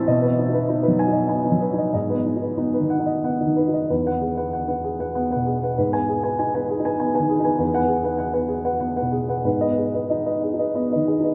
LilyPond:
<<
  \new Staff \with { instrumentName = "Upright piano" } { \time 3/4 \key e \major \tempo 4 = 95 << { r4. gis''8 r4 | r4. fis''8 r4 | r16 fis''16 r2 r8 | r16 gis''16 r2 r8 |
r16 fis''16 r2 r8 | r16 dis''16 r2 r8 | } \\ { dis''16 b'16 dis'16 b'16 dis'16 b'8 dis''16 gis''16 dis'16 b'16 dis''16 | dis''16 b'16 dis'16 b'16 dis'16 b'8 dis''16 fis''16 dis'16 b'16 dis''16 | b'16 b'16 gis'16 <b' fis''>16 fis''16 <b' fis''>16 gis'16 <b' fis''>16 fis''16 <b' fis''>16 gis'16 <b' fis''>16 | b'16 b'16 gis'16 <b' gis''>16 gis''16 <b' gis''>16 gis'16 <b' gis''>16 gis''16 <b' gis''>16 gis'16 <b' gis''>16 |
b'16 b'16 gis'16 <b' fis''>16 fis''16 <b' fis''>16 gis'16 <b' fis''>16 fis''16 <b' fis''>16 gis'16 <b' fis''>16 | b'16 b'16 gis'16 <b' dis''>16 dis''16 <b' dis''>16 gis'16 <b' dis''>16 dis''16 <b' dis''>16 gis'16 <b' dis''>16 | } >> }
  \new Staff \with { instrumentName = "Upright piano" } { \time 3/4 \key e \major \tuplet 3/2 { b,8 b8 dis'8 b8 fis8 dis'8 b8 fis8 dis'8 } | \tuplet 3/2 { gis,8 b8 dis'8 b8 dis8 dis'8 b8 dis8 dis'8 } | \tuplet 3/2 { e,8 b4 } r4 \tuplet 3/2 { b8 b,4 } | \tuplet 3/2 { gis,8 b4 dis'4 dis'8 b8 dis8 dis'8 } |
\tuplet 3/2 { e,8 b4 } r4 \tuplet 3/2 { b8 b,4 } | \tuplet 3/2 { gis,8 b4 dis'4 dis'8 b8 dis8 dis'8 } | }
>>